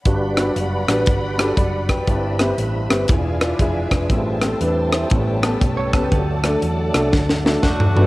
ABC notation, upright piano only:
X:1
M:4/4
L:1/8
Q:"Swing" 1/4=119
K:G
V:1 name="Upright piano"
z [DFGB] z [DFGB] z [DFGA] [db] [Bg]- | [Bg] [CEGB] z [CEGB] z [=Fd] [^Ge] [DB]- | [DB] [CA] [DB] [Ec]2 [B,^CGA] z [B,CGB] | z [A,DFA] z [A,DFA] z [A,DFA] z [A,DFB] |]
V:2 name="Upright piano" clef=bass
G,,3 z4 z | G,,3 z E,3 z | A,,3 z A,,3 z | D,3 z4 z |]